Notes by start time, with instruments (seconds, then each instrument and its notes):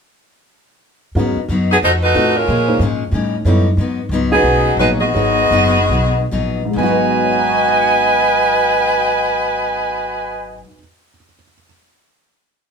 1.15 upright bass G#2, steel-string acoustic guitar G#2 F#3 B3, grand piano G#3 C#4 F#4 A#4
1.19 steel-string acoustic guitar D#4
1.36 muted upright bass stroke
1.48 upright bass F#2, steel-string acoustic guitar G#2 F#3 B3 D#4
1.71 saxophone section F#3 B3 D#4 G#4
1.82 upright bass F2, steel-string acoustic guitar F3 A3 D#4 F#4, saxophone section A3 D#4 F#4 C5
2.03 saxophone section A3 D#4 F#4 B4
2.14 upright bass A2, steel-string acoustic guitar F3 A3 D#4 F#4, grand piano C4 D#4 F#4 A4
2.36 saxophone section G#3 C#4 F4 A#4
2.46 steel-string acoustic guitar A#2 F3 G#3 C#4, upright bass A#2
2.67 grand piano A#3 D#4 G#4 C5
2.79 upright bass G#2, steel-string acoustic guitar A#2 F3 G#3 C#4
3.11 steel-string acoustic guitar A2 G3 C#4 D#4, upright bass A2
3.44 upright bass F#2, steel-string acoustic guitar A2 G3 C#4 D#4, grand piano B3 E4 A4 C#5
3.77 upright bass G#2, steel-string acoustic guitar G#2 F#3 B3 D#4
4.09 upright bass C#2, steel-string acoustic guitar G#2 F#3 B3
4.14 steel-string acoustic guitar D#4
4.31 saxophone section F#3 B3 D#4 G#4, grand piano G#3 C#4 F#4 B4
4.43 upright bass B1, steel-string acoustic guitar G#2 F#3 B3
4.48 steel-string acoustic guitar D#4
4.77 upright bass A#1, steel-string acoustic guitar G#2 F#3 B3, saxophone section G#3 D#4 F#4 B4, grand piano A#3 D#4 G#4 C#5
4.81 steel-string acoustic guitar D#4
5.01 saxophone section B3 F#4 G#4 D#5
5.14 upright bass G#1, steel-string acoustic guitar G#2 F#3 B3 D#4, grand piano D#4 G#4 A#4 C#5
5.51 upright bass F#1, steel-string acoustic guitar G#2 F#3 B3 D#4
5.89 upright bass B1, steel-string acoustic guitar G#2 F#3
5.93 steel-string acoustic guitar B3 D#4
6.31 upright bass A#1, steel-string acoustic guitar G#2 F#3 B3 D#4
6.65 grand piano G#2
6.71 steel-string acoustic guitar G#2, grand piano G#3
6.76 upright bass G#1, steel-string acoustic guitar F#3, grand piano B3, saxophone section F#4 B4 D#5 G#5
6.83 steel-string acoustic guitar B3 D#4, grand piano F#4
6.90 grand piano B4
7.24 grand piano C#5
7.31 grand piano F#5
7.39 grand piano A#5
7.49 grand piano C#6
7.58 grand piano F#6
7.69 grand piano A#6
7.80 grand piano C#7